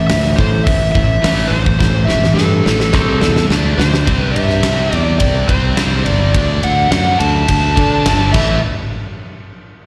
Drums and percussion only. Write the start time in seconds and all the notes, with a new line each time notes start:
0.10 snare, open hi-hat
0.39 kick
0.67 kick, open hi-hat
0.95 kick
1.24 snare, open hi-hat
1.66 kick
1.80 kick, snare
2.08 snare
2.24 snare
2.38 snare
2.66 snare
2.80 snare
2.93 kick, snare
3.21 snare
3.36 snare
3.50 snare
3.80 snare
3.94 snare
4.07 kick, ride
4.36 ride
4.49 snare
4.63 snare, ride
4.93 ride
5.20 kick, ride
5.49 kick, ride
5.77 snare, ride
6.06 ride
6.35 kick, ride
6.63 ride
6.92 snare, ride
7.20 ride
7.48 kick, ride
7.77 kick, ride
8.06 snare, ride
8.34 kick, crash